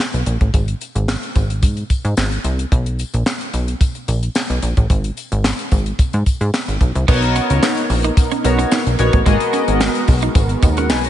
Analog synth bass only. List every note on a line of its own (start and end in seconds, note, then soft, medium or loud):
0.14 0.23 B1 medium
0.26 0.37 A#1 medium
0.41 0.51 A1 medium
0.54 0.75 G#1 loud
0.95 1.16 G#1 loud
1.36 1.64 G#1 loud
1.63 1.84 G#2 loud
2.05 2.14 G#2 medium
2.17 2.38 G#1 loud
2.44 2.65 C2 medium
2.72 3.04 B1 loud
3.14 3.23 A#1 loud
3.54 3.75 B1 medium
4.08 4.29 A#1 medium
4.50 4.60 B1 medium
4.63 4.74 A#1 medium
4.77 4.87 A1 medium
4.90 5.11 G#1 medium
5.32 5.53 G#1 loud
5.72 5.93 G#1 medium
6.14 6.23 G#2 medium
6.41 6.51 G#2 loud
6.68 6.78 G#1 medium
6.81 6.92 B1 medium
6.95 7.05 C2 loud
7.08 7.40 B1 loud
7.50 7.60 C#2 loud
7.90 8.11 A#1 loud
8.44 8.65 B1 medium
8.86 8.96 B1 medium
8.99 9.10 A#1 medium
9.13 9.23 A1 medium
9.26 9.37 G#1 loud
9.68 9.89 G#1 loud
10.08 10.29 B1 loud
10.35 10.56 G#1 loud
10.63 10.91 D#2 medium
10.90 11.10 B1 loud